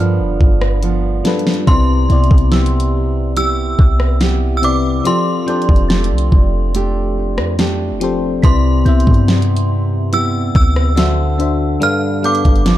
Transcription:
Already playing: G2 D3 G3 D4 F4 A4 A#4 B4 B5
0.00 F3 B3 D4 F6
0.20 F1
0.41 G1, kick
0.61 cross-stick
0.83 F3 B3 D4, closed hi-hat
1.24 G3 D4 F4 A4 B4, snare, closed hi-hat
1.39 closed hi-hat
1.47 snare
1.54 closed hi-hat
1.67 C2 C3 C4 E4 B4 D5 C6, kick, closed hi-hat
2.09 C2 C3 B3 C4 E4 D5, closed hi-hat
2.24 closed hi-hat
2.31 C2, kick
2.38 closed hi-hat
2.52 B3 E4 G4 E6, snare, closed hi-hat
2.66 closed hi-hat
2.80 closed hi-hat
3.36 B3 E4 G4 E6, closed hi-hat
3.79 C2, kick
4.00 cross-stick
4.21 B3 E4 G4, snare, closed hi-hat
4.57 E6
4.62 C3 C4 E4 B4 D5 D6, closed hi-hat
5.04 F3 C4 G4 A4 D5 C6, closed hi-hat
5.46 F3 C4 D4 G4 A4 D5 G6, closed hi-hat
5.62 closed hi-hat
5.69 F1, kick
5.76 closed hi-hat
5.89 A3 D4 G4 A6, snare, closed hi-hat
6.04 closed hi-hat
6.11 C2
6.18 closed hi-hat
6.32 F1, kick
6.74 A3 D4 G4, closed hi-hat
7.38 F2, cross-stick
7.59 A3 D4 G4, snare, closed hi-hat
7.91 F1
8.00 F3 C4 G4 A4 C5, closed hi-hat
8.42 C2 C3 C4 E4 B4 D5 C6 B6, kick, closed hi-hat
8.85 C2 C3 B3 C4 E4 E5 G6, closed hi-hat
9.00 closed hi-hat
9.07 G2, kick
9.14 closed hi-hat
9.28 B3 E4 G4, snare, closed hi-hat
9.42 closed hi-hat
9.56 closed hi-hat
10.12 B3 E4 G4 E6, closed hi-hat
10.55 D2 E6, kick
10.76 cross-stick
10.95 D3 D4 F#4 C5 E5, snare, closed hi-hat
11.38 D3 D4 F#4 C5 E5, closed hi-hat
11.80 G2 G3 D4 A4 B4 F5 F6, closed hi-hat
12.23 G3 B3 D4 A4 B4 F5 D6 G6, closed hi-hat
12.35 closed hi-hat
12.45 G1, kick, closed hi-hat
12.56 closed hi-hat
12.66 F3 B3 D4, snare, closed hi-hat

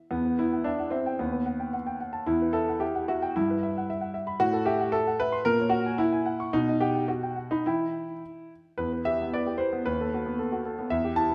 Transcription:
0.11 E2 B3
0.25 B4
0.39 E4 E5
0.53 F#5
0.64 D4 E5
0.79 F#5
0.90 C4 E5
1.06 G5
1.19 D#2 B3
1.33 B4
1.46 F#5
1.60 G5
1.73 F#5
1.87 G5
2.00 F#5
2.13 A5
2.26 E2 E4
2.42 B4
2.53 A4 E5
2.69 F#5
2.80 G4 E5
2.95 F#5
3.08 F#4 E5
3.22 G5
3.36 G2 E4
3.50 B4
3.63 E5
3.78 F#5
3.90 E5
4.01 F#5
4.14 E5
4.27 B5
4.40 A2 F#4
4.53 A4
4.66 G4 E5
4.81 F#5
4.92 A4 E5
5.07 F#5
5.20 B4 E5
5.32 C6
5.45 A#2 A#4
5.60 C#5
5.70 F#4 F#5
5.86 G#5
5.98 E4 F#5
6.13 G#5
6.26 F#5
6.40 C#6
6.53 B2 D#4
6.69 D#5
6.80 G4 F#5
6.95 G5
7.08 F#4 F#5
7.23 G5
7.36 F#5
7.51 D#4 B5
7.66 E3 E4 G5 B5
8.78 E2 B4
8.93 B4
9.05 G4 E5
9.22 B3
9.34 B4 D5
9.46 G4
9.58 B4 C5
9.73 B3
9.86 D#2 B4
10.01 A4
10.14 F#4
10.26 B3
10.39 A4
10.52 F#4
10.65 A4
10.79 B3
10.90 E2 E5
11.05 G4
11.16 E4 A5
11.30 B3

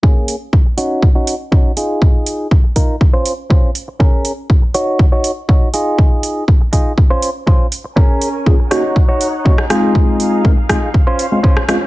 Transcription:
0.03 A#3 C#4 G#4, kick
0.28 open hi-hat
0.53 kick
0.66 muted clean electric guitar stroke
0.78 C#4 D#4 F#4, open hi-hat
1.03 kick
1.15 C#4 D#4 F#4
1.27 open hi-hat
1.52 C#4 D#4 F#4, kick
1.77 D#4 F4 G#4, open hi-hat
2.02 kick
2.26 open hi-hat
2.51 kick
2.64 muted clean electric guitar stroke
2.76 D#4 F4 A#4, kick, open hi-hat
3.01 kick
3.13 C#4 F4 C5
3.25 open hi-hat
3.50 C#4 F4 C5, kick
3.75 open hi-hat
3.88 muted clean electric guitar stroke
4.00 C#4 G#4 A#4, kick
4.25 open hi-hat
4.50 kick
4.62 muted clean electric guitar stroke
4.74 D#4 F#4 C#5, open hi-hat
4.99 kick
5.12 D#4 F#4 C#5
5.24 open hi-hat
5.49 D#4 F#4 C#5, kick
5.74 D#4 F4 G#4, open hi-hat
5.98 kick
6.23 open hi-hat
6.48 kick
6.61 muted clean electric guitar stroke
6.73 D#4 F4 G#4, kick, open hi-hat
6.98 kick
7.10 C#4 F4 C5
7.22 open hi-hat
7.47 C#4 F4 C5, kick
7.72 open hi-hat
7.84 muted clean electric guitar stroke
7.96 C#4 G#4 A#4 G#5, kick
8.22 open hi-hat
8.46 A#3 C#4 F4 G#4, kick
8.59 muted clean electric guitar stroke
8.71 A#3 C#4 D#4 F#4 C#5 F#5, cross-stick, open hi-hat
8.96 kick
9.09 D#4 F#4 C#5
9.21 open hi-hat
9.45 A#3 C#4 D#4 F#4 C#5, kick
9.58 cross-stick
9.69 G#3 C4 D#4 F4 G#4 F5, cross-stick, open hi-hat
9.95 kick
10.20 open hi-hat
10.44 G#3 C4 D#4 A#4, kick
10.57 muted clean electric guitar stroke
10.69 G#3 C4 D#4 F4 G#4, kick, cross-stick, open hi-hat
10.94 C#4 C5, kick
11.07 C#4 F4 C5
11.19 open hi-hat
11.31 G#3 C4 C#4 F4
11.43 C#4 F4 C5, kick
11.57 cross-stick
11.68 G#3 C4 C#4 F4, cross-stick, open hi-hat
11.81 muted clean electric guitar stroke

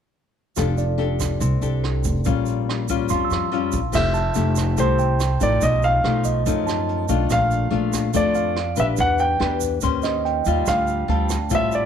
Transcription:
0.56 F1 F3 D4 G4 A4, kick, cross-stick, closed hi-hat, shaker
0.78 D5, closed hi-hat, shaker
0.98 D4 G4 A4, closed hi-hat
1.20 kick, cross-stick, closed hi-hat, shaker
1.40 C2 C3, kick, closed hi-hat, shaker
1.61 C2 D4 G4 A4, closed hi-hat, shaker
1.84 cross-stick, closed hi-hat
2.04 F1, kick, closed hi-hat, shaker
2.24 A#1 A#2 G3 C#4 F4, kick, closed hi-hat, shaker
2.46 closed hi-hat, shaker
2.69 cross-stick, closed hi-hat
2.88 G3 C#4 F4, kick, closed hi-hat, shaker
3.09 F2 F3 C6, kick, closed hi-hat, shaker
3.25 E6
3.30 F2, cross-stick, closed hi-hat, shaker
3.52 G3 C#4 F4, closed hi-hat
3.72 A#1, kick, closed hi-hat, shaker
3.92 F1 F3 A3 E4 G4 E5, kick, cross-stick, crash, shaker
4.14 A5, closed hi-hat, shaker
4.34 F1 A3 E4 G4, closed hi-hat, shaker
4.56 kick, cross-stick, closed hi-hat, shaker
4.77 C2 C3 A3 E4 G4 C5, kick, closed hi-hat, shaker
4.99 G5, closed hi-hat, shaker
5.20 cross-stick, closed hi-hat, shaker
5.40 A1 F3 A3 D#4 D5, kick, closed hi-hat, shaker
5.61 B1 B2 D#5, kick, closed hi-hat, shaker
5.82 F5, closed hi-hat, shaker
6.04 B1 F3 A3 D#4, cross-stick, closed hi-hat
6.24 D#5, kick, closed hi-hat, shaker
6.46 F#2 F3 A3 D#4, kick, closed hi-hat, shaker
6.67 A5, cross-stick, closed hi-hat, shaker
6.89 closed hi-hat
7.09 B1 A3 D4 F4, kick, closed hi-hat, shaker
7.30 A#1 A#2 F5, kick, cross-stick, closed hi-hat, shaker
7.51 closed hi-hat, shaker
7.70 A#1 A3 D4 F4, closed hi-hat
7.93 kick, cross-stick, closed hi-hat, shaker
8.14 F2 F3 A3 D4 F4 D5, kick, closed hi-hat, shaker
8.35 F5, closed hi-hat, shaker
8.56 cross-stick, closed hi-hat
8.76 A#1 D4 G4 B4 E5, kick, closed hi-hat, shaker
8.97 E2 E3 F#5, kick, closed hi-hat, shaker
9.18 G5, closed hi-hat, shaker
9.40 E2 D4 G4 B4, cross-stick, closed hi-hat
9.61 kick, closed hi-hat, shaker
9.81 D#2 D#3 C#4 G4 C5, kick, closed hi-hat, shaker
10.02 D#5, cross-stick, closed hi-hat, shaker
10.25 G5, closed hi-hat
10.45 D#2 G3 C4 F4, kick, closed hi-hat, shaker
10.66 D2 D3 F5, kick, cross-stick, closed hi-hat, shaker
10.87 closed hi-hat, shaker
11.08 D2 G3 C4 F4 A5, closed hi-hat
11.29 kick, cross-stick, closed hi-hat, shaker
11.50 A1 A2 G3 C4 F4, kick, closed hi-hat, shaker
11.55 E5
11.72 D5, closed hi-hat, shaker

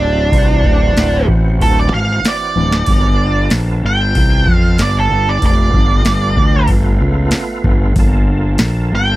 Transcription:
Already playing: F#3 C4 D4 E5
0.00 D1
0.32 C2 E3 C4 F#4, kick, open hi-hat
0.65 D1, kick
0.96 D1, snare, open hi-hat
1.28 A1, kick
1.61 D1 A4, kick, open hi-hat
1.80 D5
1.92 G#1 F5
2.24 muted fingered electric bass stroke, snare, open hi-hat
2.28 D5
2.55 D1, high tom
2.72 snare
2.86 G1 C4 F#4 A#4, kick, open hi-hat
3.13 B3 F4 A4
3.50 A#1, snare, open hi-hat
3.83 G1 G5
4.15 C2, kick, open hi-hat
4.47 F2, kick
4.53 F5
4.78 G1 D5, snare, open hi-hat
5.00 A4
5.12 G1
5.29 D5
5.42 F1 A3 B3 F4 D5, kick, open hi-hat
5.74 G1, kick
6.05 G1, snare, open hi-hat
6.37 D2, kick
6.68 G1, kick, open hi-hat
7.01 C#2
7.31 muted fingered electric bass stroke, snare, open hi-hat
7.64 G1, kick
7.96 G1, kick, open hi-hat
8.00 A#3 F4 A4
8.58 A#1, snare, open hi-hat
8.92 G1 G5

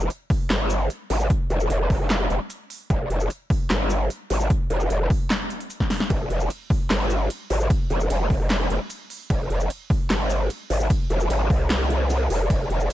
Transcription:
0.00 shaker
0.10 closed hi-hat
0.30 kick, open hi-hat
0.50 G1, snare, clap, closed hi-hat
0.70 closed hi-hat, shaker
0.90 closed hi-hat
1.10 G#1, open hi-hat
1.20 shaker
1.30 kick, closed hi-hat
1.50 F1, closed hi-hat
1.60 shaker
1.70 F1, closed hi-hat
1.90 kick, open hi-hat
2.10 snare, clap, closed hi-hat
2.30 F1, closed hi-hat
2.50 closed hi-hat, shaker
2.70 open hi-hat
2.90 F1, kick, closed hi-hat
3.10 F1, closed hi-hat
3.20 shaker
3.30 closed hi-hat
3.50 kick, open hi-hat
3.70 G1, snare, clap, closed hi-hat
3.90 closed hi-hat, shaker
4.10 closed hi-hat
4.30 G#1, open hi-hat
4.40 shaker
4.50 kick, closed hi-hat
4.70 F1, closed hi-hat
4.80 shaker
4.90 F1, closed hi-hat
5.10 kick, open hi-hat
5.30 snare, clap, closed hi-hat
5.50 closed hi-hat
5.60 closed hi-hat
5.70 closed hi-hat, shaker
5.80 kick, snare
5.90 snare, open hi-hat
6.00 snare
6.10 F1, kick, closed hi-hat, ride
6.30 F1, closed hi-hat
6.40 shaker
6.50 closed hi-hat, ride
6.70 kick, open hi-hat
6.90 G1, snare, clap, closed hi-hat, ride
7.10 closed hi-hat, shaker
7.30 closed hi-hat, ride
7.50 G#1, open hi-hat
7.60 shaker
7.70 kick, closed hi-hat, ride
7.90 F1, closed hi-hat
8.00 shaker
8.10 F1, closed hi-hat, ride
8.30 kick, open hi-hat
8.50 snare, clap, closed hi-hat, ride
8.70 F1, closed hi-hat
8.90 closed hi-hat, ride, shaker
9.10 open hi-hat
9.30 F1, kick, closed hi-hat, ride
9.50 F1, closed hi-hat
9.60 shaker
9.70 closed hi-hat, ride
9.90 kick, open hi-hat
10.10 G1, snare, clap, closed hi-hat, ride
10.30 closed hi-hat, shaker
10.50 closed hi-hat, ride
10.70 G#1, open hi-hat
10.80 shaker
10.90 kick, closed hi-hat, ride
11.10 F1, closed hi-hat
11.20 shaker
11.30 G#1, closed hi-hat, ride
11.50 C2, kick, open hi-hat
11.70 snare, clap, closed hi-hat, ride
11.90 closed hi-hat
12.10 closed hi-hat, ride, shaker
12.30 F1, open hi-hat
12.50 F1, kick, closed hi-hat, ride
12.70 F1, closed hi-hat
12.80 shaker
12.90 closed hi-hat, ride

